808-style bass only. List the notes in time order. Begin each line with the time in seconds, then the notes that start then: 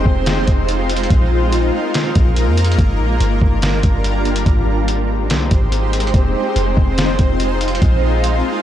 0.06 F1
0.48 F1
1.10 A#1
2.16 A#1
2.47 F2
2.78 G1
2.99 A#1
3.20 G1
3.42 G1
3.84 G1
4.46 G#1
5.30 C2
5.51 G#1
6.14 F1
6.56 F1
6.77 F1
7.19 F1
7.82 A#1